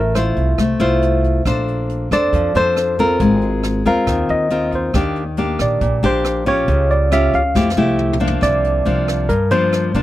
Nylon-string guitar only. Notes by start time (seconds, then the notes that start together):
Already playing: A3
0.16 E4 F4 C5
0.59 A3
0.80 E4 F4 C5
1.46 A#3 D4 A4 C5
2.12 D4 A4 C5
2.34 F3
2.55 D4 A4 C5
2.99 C4 F4 A#4
3.21 G#3
3.86 C4 F4 A#4
4.07 D#3
4.51 C4 F4 A#4
4.94 D#3 A#3 D4 G4
5.38 A#3 D4 G4
5.81 A#2
6.03 A#3 D4 G4
6.46 C#4 F4 G4
6.68 C#3
7.12 C#4 F4 G4
7.55 F3 A3 E4 G4
7.77 A3 E4 G4
8.20 F3 A#3 D4
8.41 C3
8.85 F3 A#3 D4
9.29 G2
9.51 F3 A#3 D4
9.95 F3 A#3 D4